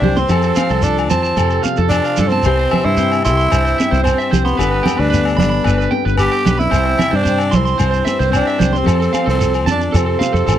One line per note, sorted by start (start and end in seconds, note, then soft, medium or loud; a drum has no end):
0.00 0.23 C2 medium
0.00 0.31 G2 medium
0.00 0.30 C4 medium
0.00 0.21 D4 medium
0.00 0.27 E4 medium
0.00 0.31 G4 medium
0.00 0.28 B4 medium
0.00 0.16 C5 medium
0.00 low conga medium
0.16 0.86 C4 medium
0.16 0.29 C6 medium
0.16 high conga medium
0.16 shekere soft
0.29 0.51 F2 loud
0.29 2.45 F3 medium
0.29 0.42 A4 medium
0.29 1.11 A4 medium
0.29 0.60 C5 medium
0.29 low agogo medium
0.29 shekere medium
0.42 0.56 A4 medium
0.42 shekere soft
0.55 0.69 F5 medium
0.55 high conga medium
0.55 low agogo medium
0.55 shekere medium
0.60 1.64 C5 medium
0.69 1.11 C2 medium
0.69 0.82 A4 medium
0.69 shekere soft
0.82 1.10 D4 medium
0.82 1.91 F4 medium
0.82 0.96 A4 medium
0.82 shekere medium
0.98 low agogo medium
0.98 shekere soft
1.10 1.32 F2 medium
1.10 1.60 C4 medium
1.10 2.42 A4 medium
1.10 1.22 A5 medium
1.10 low conga medium
1.10 shekere medium
1.23 1.36 A5 medium
1.23 shekere soft
1.37 1.58 F2 medium
1.37 2.42 C3 medium
1.37 1.49 A4 medium
1.37 low agogo medium
1.37 shekere medium
1.50 1.63 A4 medium
1.50 shekere soft
1.63 2.18 C5 medium
1.63 1.76 F5 medium
1.63 high conga medium
1.63 shekere medium
1.76 1.99 F2 medium
1.76 1.90 A4 medium
1.76 shekere soft
1.89 2.30 D4 medium
1.89 2.42 F4 medium
1.89 2.04 A4 medium
1.89 low agogo medium
1.89 shekere medium
2.05 2.17 F5 medium
2.05 shekere soft
2.17 2.40 G2 medium
2.17 2.31 A4 medium
2.17 2.42 C5 medium
2.17 low conga medium
2.17 shekere medium
2.28 2.86 C4 medium
2.28 2.44 A5 medium
2.28 high conga medium
2.28 shekere soft
2.43 2.66 C2 medium
2.43 3.52 C3 medium
2.43 4.57 E4 medium
2.43 4.32 G4 medium
2.43 2.71 B4 medium
2.43 2.58 C5 medium
2.43 low agogo medium
2.43 shekere medium
2.59 2.71 C5 medium
2.71 4.60 B4 medium
2.71 2.84 E5 medium
2.71 high conga medium
2.71 low conga medium
2.71 low agogo medium
2.84 3.28 G2 medium
2.84 3.24 E4 medium
2.84 2.96 C5 medium
2.97 3.24 C4 medium
2.97 3.10 C5 medium
2.97 shekere medium
3.12 low agogo medium
3.12 shekere soft
3.25 3.47 C2 medium
3.25 3.79 C4 medium
3.25 4.01 E4 loud
3.25 3.36 C6 medium
3.25 shekere medium
3.37 3.50 C6 medium
3.37 shekere soft
3.51 3.73 C2 medium
3.51 4.57 G2 medium
3.51 3.64 C5 medium
3.51 low agogo medium
3.51 shekere medium
3.65 3.78 C5 medium
3.65 shekere soft
3.78 4.04 C4 soft
3.78 3.91 E5 medium
3.78 high conga medium
3.78 shekere medium
3.91 4.13 C2 medium
3.91 4.03 C5 medium
3.91 shekere soft
4.03 4.42 C4 medium
4.03 4.56 C4 medium
4.03 4.17 C5 medium
4.03 low agogo medium
4.03 shekere medium
4.18 4.31 E5 medium
4.18 shekere soft
4.31 4.54 C2 medium
4.31 4.59 G4 medium
4.31 4.44 C5 medium
4.31 low conga medium
4.31 shekere medium
4.44 5.01 B3 medium
4.44 4.58 C6 medium
4.44 high conga medium
4.44 shekere soft
4.57 4.80 G1 medium
4.57 5.64 G2 medium
4.57 5.39 D4 medium
4.57 6.71 A4 medium
4.57 4.70 B4 medium
4.57 4.86 B4 medium
4.57 low agogo medium
4.57 shekere medium
4.71 4.84 B4 medium
4.83 5.91 B4 medium
4.83 4.97 G5 medium
4.83 high conga medium
4.83 low conga medium
4.83 low agogo medium
4.87 shekere medium
4.97 5.40 D2 medium
4.97 5.38 D4 medium
4.97 5.08 B4 medium
5.10 6.18 B3 medium
5.10 5.24 B4 medium
5.10 shekere medium
5.25 low agogo medium
5.25 shekere soft
5.37 5.60 G1 medium
5.37 5.89 D4 medium
5.37 6.45 D4 medium
5.37 5.49 B5 medium
5.37 low conga medium
5.41 shekere medium
5.50 5.64 B5 medium
5.64 5.87 G1 medium
5.64 6.73 G2 medium
5.64 5.77 B4 medium
5.64 low agogo medium
5.64 shekere medium
5.78 5.91 B4 medium
5.78 shekere soft
5.91 6.70 B4 medium
5.91 6.04 G5 medium
5.91 high conga medium
6.05 6.27 G1 medium
6.05 6.16 B4 medium
6.05 shekere soft
6.17 6.70 B3 medium
6.17 6.61 G4 medium
6.17 6.31 B4 medium
6.17 low agogo medium
6.17 shekere medium
6.32 6.45 G5 medium
6.32 shekere soft
6.45 6.67 B1 medium
6.45 6.70 D4 medium
6.45 6.59 B4 medium
6.45 low conga medium
6.45 shekere medium
6.58 7.17 E4 medium
6.58 6.71 B5 medium
6.58 high conga medium
6.58 shekere soft
6.71 6.93 C2 medium
6.71 7.79 C3 medium
6.71 6.97 C4 medium
6.71 6.84 C5 medium
6.71 low agogo medium
6.71 shekere medium
6.86 6.99 C5 medium
6.98 7.23 C4 medium
6.98 7.12 E5 medium
6.98 high conga medium
6.98 low conga medium
6.98 low agogo medium
6.98 shekere medium
7.11 7.54 G2 medium
7.11 7.22 C5 medium
7.15 7.57 D4 medium
7.23 8.29 C4 medium
7.23 7.38 C5 medium
7.23 shekere medium
7.38 low agogo medium
7.38 shekere soft
7.51 7.74 C2 medium
7.51 8.83 E4 medium
7.51 7.64 C6 medium
7.51 low conga medium
7.51 shekere medium
7.56 8.35 C4 medium
7.65 7.79 C6 medium
7.65 shekere soft
7.78 8.01 C2 medium
7.78 8.86 G2 medium
7.78 7.90 C5 medium
7.78 low agogo medium
7.78 shekere medium
7.91 8.05 C5 medium
7.91 shekere soft
8.05 8.83 B4 medium
8.05 8.19 E5 medium
8.05 high conga medium
8.05 shekere medium
8.19 8.41 C2 medium
8.19 8.31 C5 medium
8.19 shekere soft
8.30 8.83 C4 medium
8.30 8.45 C5 medium
8.30 low agogo medium
8.34 8.79 D4 medium
8.34 shekere medium
8.47 8.59 E5 medium
8.47 shekere soft
8.58 8.82 C2 medium
8.58 8.84 G4 medium
8.58 8.72 C5 medium
8.58 low conga medium
8.58 shekere medium
8.73 8.86 C6 medium
8.73 high conga medium
8.73 shekere soft
8.78 9.29 C4 medium
8.84 9.08 F2 medium
8.84 10.59 F3 medium
8.84 9.66 A4 medium
8.84 8.99 A4 medium
8.84 muted steel-string acoustic guitar stroke medium
8.88 low agogo medium
8.88 shekere medium
9.00 9.13 A4 medium
9.00 shekere soft
9.11 10.19 C5 medium
9.11 9.26 F5 medium
9.11 high conga medium
9.11 low agogo medium
9.11 shekere medium
9.26 9.67 C2 medium
9.26 9.66 C4 medium
9.26 9.38 A4 medium
9.26 shekere soft
9.38 10.46 F4 medium
9.38 9.53 A4 medium
9.38 shekere medium
9.54 low agogo medium
9.54 shekere soft
9.66 9.88 F2 medium
9.66 10.59 A4 medium
9.66 9.79 A5 medium
9.66 high conga medium
9.66 low conga medium
9.66 shekere medium
9.71 9.99 D4 medium
9.81 shekere soft
9.92 10.15 F2 medium
9.92 10.59 C3 medium
9.92 10.05 A4 medium
9.92 low agogo medium
9.92 shekere medium
9.97 10.59 C4 medium
10.06 10.19 A4 medium
10.19 10.59 C5 medium
10.19 10.33 F5 medium
10.19 high conga medium
10.19 shekere medium
10.33 10.44 F2 medium
10.33 10.45 A4 medium
10.33 shekere soft
10.47 10.59 A1 medium
10.47 10.59 F4 medium
10.47 10.59 A4 medium
10.47 low agogo medium
10.47 shekere medium